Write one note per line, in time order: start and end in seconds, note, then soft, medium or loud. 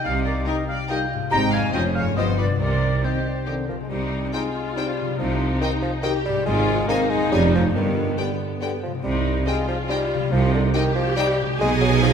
0.00 1.25 C3 soft
0.00 1.16 D#4 soft
0.00 1.21 G4 soft
0.00 1.32 A#4 soft
0.00 0.12 D5 medium
0.00 0.24 F5 medium
0.04 0.40 C2 medium
0.04 0.40 C3 medium
0.04 0.46 D#4 medium
0.04 0.15 F5 medium
0.24 0.34 A#4 medium
0.24 0.45 D5 medium
0.24 0.47 D5 medium
0.45 0.63 G3 medium
0.45 0.55 D#4 medium
0.45 0.63 D#4 medium
0.45 0.89 G4 medium
0.45 0.55 G4 medium
0.45 0.55 A#4 medium
0.45 0.56 A#4 soft
0.45 0.67 D#5 medium
0.45 0.57 D#5 medium
0.68 0.89 D5 medium
0.68 0.74 F5 medium
0.68 0.78 F5 medium
0.88 1.05 G3 medium
0.88 0.96 D#4 medium
0.88 1.05 D#4 medium
0.88 1.31 F4 medium
0.88 0.97 G4 medium
0.88 0.98 A#4 medium
0.88 0.98 D#5 medium
0.88 0.94 G5 medium
0.88 1.11 G5 medium
1.13 1.67 G#2 medium
1.17 1.69 D#4 soft
1.22 1.71 G4 soft
1.27 1.38 G4 medium
1.27 1.73 C5 soft
1.31 1.67 G#1 medium
1.31 1.68 G#2 medium
1.31 1.48 G3 medium
1.31 1.48 C4 medium
1.31 1.39 D#4 medium
1.31 1.74 D#4 medium
1.31 1.40 C5 medium
1.31 1.51 G5 medium
1.31 1.37 A#5 loud
1.31 1.42 A#5 loud
1.53 2.09 F2 medium
1.53 1.74 F5 medium
1.53 1.63 G#5 medium
1.53 1.73 G#5 medium
1.60 2.11 C#4 soft
1.65 2.06 F4 soft
1.69 1.81 C#4 medium
1.69 1.81 F4 medium
1.69 2.16 G#4 soft
1.73 2.10 F1 medium
1.73 2.10 F2 medium
1.73 1.90 F3 medium
1.73 1.90 C#4 medium
1.73 2.16 C#4 medium
1.73 1.82 G#4 medium
1.73 1.81 D#5 medium
1.73 1.79 G5 medium
1.73 1.84 G5 medium
1.95 2.52 G2 medium
1.95 2.17 C#5 medium
1.95 2.01 F5 medium
1.95 2.05 F5 medium
2.02 2.54 B3 soft
2.07 2.57 F4 soft
2.12 2.54 G4 soft
2.16 2.53 G1 medium
2.16 2.53 G2 medium
2.16 2.32 F3 medium
2.16 2.59 B3 medium
2.16 2.32 B3 medium
2.16 2.25 B3 medium
2.16 2.25 F4 medium
2.16 2.25 G4 soft
2.16 2.38 C5 medium
2.16 2.26 D#5 medium
2.16 2.23 D#5 medium
2.37 2.46 B4 medium
2.37 2.59 D5 medium
2.37 2.48 D5 medium
2.42 3.70 C3 soft
2.46 3.74 C4 soft
2.51 3.79 D#4 soft
2.51 3.84 G4 soft
2.59 2.96 C2 medium
2.59 2.96 C3 medium
2.59 3.45 C4 medium
2.59 3.02 A#4 medium
2.59 3.02 D5 medium
2.59 3.06 D5 medium
3.02 3.19 D#3 soft
3.02 3.10 C4 soft
3.02 3.19 C4 soft
3.02 3.10 D#4 soft
3.02 3.12 G4 soft
3.02 3.47 G4 soft
3.02 3.46 C5 soft
3.02 3.47 C5 medium
3.02 3.23 D#5 medium
3.26 3.35 D5 medium
3.46 3.67 D3 medium
3.46 3.64 D#3 soft
3.46 3.54 C4 soft
3.46 3.63 C4 soft
3.46 3.54 D#4 soft
3.46 3.54 G4 soft
3.46 3.67 C5 medium
3.68 5.00 C3 soft
3.68 3.75 F3 medium
3.68 3.77 A#4 soft
3.76 5.13 C4 soft
3.81 3.91 G#3 soft
3.81 5.09 D#4 soft
3.85 6.45 G4 soft
3.89 4.26 C2 medium
3.89 4.26 C3 medium
3.89 4.33 G3 medium
3.89 4.30 D#4 medium
4.33 4.78 G#3 medium
4.33 4.50 C4 soft
4.33 4.42 D#4 soft
4.33 4.49 D#4 soft
4.33 5.17 F4 medium
4.33 4.43 C5 medium
4.33 4.42 G5 soft
4.76 5.18 G3 medium
4.76 4.92 C4 soft
4.76 4.92 D#4 soft
4.76 4.85 D#4 soft
4.76 4.85 C5 soft
4.76 4.85 G5 soft
5.01 6.39 C3 medium
5.06 6.41 G3 soft
5.10 6.35 D#4 soft
5.15 5.54 C2 medium
5.15 5.54 C3 medium
5.15 5.60 F3 medium
5.15 6.02 D#4 medium
5.15 6.46 A#4 soft
5.19 5.54 C2 medium
5.61 5.71 D#3 medium
5.61 5.69 D#4 medium
5.61 5.78 D#4 medium
5.61 5.77 G4 medium
5.61 5.70 D#5 medium
5.61 5.70 G5 medium
5.82 5.92 F3 medium
6.02 6.13 D#3 medium
6.02 6.11 D#4 medium
6.02 6.20 D#4 medium
6.02 6.46 G4 medium
6.02 6.20 G4 medium
6.02 6.10 D#5 medium
6.02 6.12 G5 medium
6.25 7.24 G#2 medium
6.25 6.45 G3 loud
6.33 7.16 G#3 medium
6.33 7.28 D#4 medium
6.41 7.30 C5 medium
6.45 6.81 G#1 medium
6.45 6.82 G#1 medium
6.45 6.81 G#2 medium
6.45 6.88 G#3 loud
6.45 6.88 F4 medium
6.88 7.11 A#3 loud
6.88 7.04 C4 medium
6.88 7.72 D#4 medium
6.88 6.97 D#4 medium
6.88 7.04 G#4 medium
6.88 6.97 C5 medium
6.88 6.97 G#5 medium
7.10 7.67 F2 medium
7.10 7.31 G#3 loud
7.17 7.69 G#3 medium
7.22 7.72 C#4 medium
7.27 7.67 F1 medium
7.27 7.39 C#4 medium
7.27 7.74 C#5 medium
7.27 7.39 C#5 medium
7.31 7.67 F1 medium
7.31 7.67 F2 medium
7.31 7.53 G3 loud
7.31 7.48 C#4 medium
7.31 7.48 G#4 medium
7.31 7.42 G#5 medium
7.55 8.97 G2 medium
7.55 7.64 F3 medium
7.61 8.89 G3 soft
7.66 9.02 D4 soft
7.70 8.10 G1 medium
7.70 8.10 G2 medium
7.70 8.80 B3 medium
7.70 9.04 B4 soft
7.75 8.21 D#3 medium
8.17 8.61 D3 medium
8.17 8.33 B3 medium
8.17 8.26 B3 medium
8.17 8.33 G4 medium
8.17 8.26 D5 medium
8.17 8.27 G5 soft
8.61 8.71 D3 medium
8.61 8.76 B3 soft
8.61 8.69 B3 soft
8.61 8.76 G4 soft
8.61 8.69 D5 soft
8.61 8.69 G5 soft
8.83 10.13 C3 medium
8.83 8.93 F3 medium
8.90 10.18 G3 soft
8.95 10.22 D#4 soft
8.99 10.32 C5 soft
9.03 9.40 C2 medium
9.03 9.39 C3 medium
9.03 9.46 G3 medium
9.03 9.44 D#4 medium
9.46 9.68 G#3 medium
9.46 9.55 C4 medium
9.46 9.62 D#4 medium
9.46 10.31 F4 medium
9.46 9.62 G4 medium
9.46 9.54 D#5 medium
9.46 9.56 G5 soft
9.68 9.78 F3 medium
9.88 10.34 G3 loud
9.88 9.96 C4 medium
9.88 10.05 D#4 medium
9.88 10.04 G4 medium
9.88 9.96 D#5 medium
9.88 9.99 G5 medium
10.14 11.53 C3 medium
10.19 11.55 G3 medium
10.24 11.49 D#4 medium
10.28 10.74 D#4 medium
10.28 11.60 A#4 medium
10.32 10.68 C2 medium
10.32 10.68 C3 medium
10.32 10.53 F3 loud
10.54 10.63 D3 medium
10.74 10.94 D#3 loud
10.74 10.91 D#4 medium
10.74 10.84 D#4 medium
10.74 11.58 G4 loud
10.74 10.91 G4 medium
10.74 10.83 D#5 medium
10.74 10.83 G5 medium
10.95 11.16 F3 loud
11.16 11.38 G3 loud
11.16 11.26 D#4 medium
11.16 11.33 D#4 medium
11.16 11.33 G4 medium
11.16 11.25 D#5 medium
11.16 11.25 G5 medium
11.41 12.13 B2 medium
11.41 12.13 G#3 medium
11.50 12.13 D#4 medium
11.55 12.13 G#4 medium
11.55 12.13 G#4 loud
11.55 12.13 G#5 medium
11.60 12.13 B1 medium
11.60 12.13 B2 medium
11.60 11.70 G#3 loud
11.60 12.13 D#4 medium
11.60 12.13 D#5 medium
11.81 11.91 F#3 medium
12.02 12.12 F3 medium
12.02 12.13 D#4 medium
12.02 12.13 G#4 medium